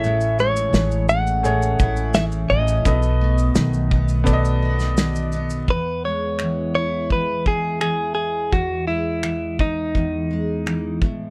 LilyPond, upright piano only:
\new Staff \with { instrumentName = "Upright piano" } { \time 4/4 \key e \major \tempo 4 = 85 <a gis' cis''>4. r8 <a gis' cis''>2 | <b a' dis''>2 <b a' d'' dis''>2 | r1 | r1 | }